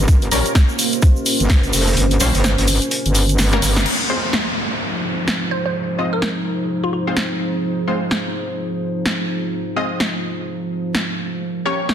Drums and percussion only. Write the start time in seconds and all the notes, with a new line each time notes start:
0.08 kick, closed hi-hat, shaker
0.22 closed hi-hat, shaker
0.31 closed hi-hat, open hi-hat, shaker
0.45 closed hi-hat, shaker
0.55 kick, snare, closed hi-hat, shaker
0.69 shaker
0.79 closed hi-hat, open hi-hat, shaker
0.92 closed hi-hat, shaker
1.02 kick, closed hi-hat, shaker
1.16 shaker
1.26 closed hi-hat, open hi-hat, shaker
1.40 closed hi-hat, shaker
1.49 kick, snare, closed hi-hat, shaker
1.63 closed hi-hat, shaker
1.73 snare, closed hi-hat, open hi-hat, shaker
1.80 snare, closed hi-hat
1.87 snare, closed hi-hat, shaker
1.92 snare, closed hi-hat
1.97 closed hi-hat, shaker
2.11 closed hi-hat, shaker
2.20 snare, closed hi-hat, open hi-hat, shaker
2.34 snare, closed hi-hat, shaker
2.44 snare, closed hi-hat, shaker
2.58 snare, closed hi-hat, shaker
2.67 closed hi-hat, open hi-hat, shaker
2.82 closed hi-hat, shaker
2.91 closed hi-hat, shaker
3.06 closed hi-hat, shaker
3.14 closed hi-hat, open hi-hat, shaker
3.29 closed hi-hat, shaker
3.38 snare, closed hi-hat, open hi-hat, shaker
3.52 snare, closed hi-hat, shaker
3.62 snare, closed hi-hat, open hi-hat, shaker
3.76 snare, closed hi-hat, shaker
3.86 crash
4.33 snare
5.28 snare
6.22 snare
7.17 snare
8.11 snare
9.06 snare
10.00 snare
10.95 snare
11.89 snare